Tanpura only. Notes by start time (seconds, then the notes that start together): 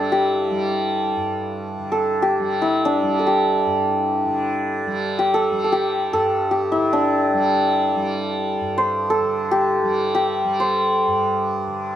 Already playing: G2 D3 G3
0.51 G3
1.17 G2
1.78 D3
2.40 G3
3.03 G3
3.66 G2
4.25 D3
4.87 G3
5.52 G3
6.12 G2
6.76 D3
7.34 G3
7.96 G3
8.61 G2
9.20 D3
9.84 G3
10.44 G3
11.07 G2
11.67 D3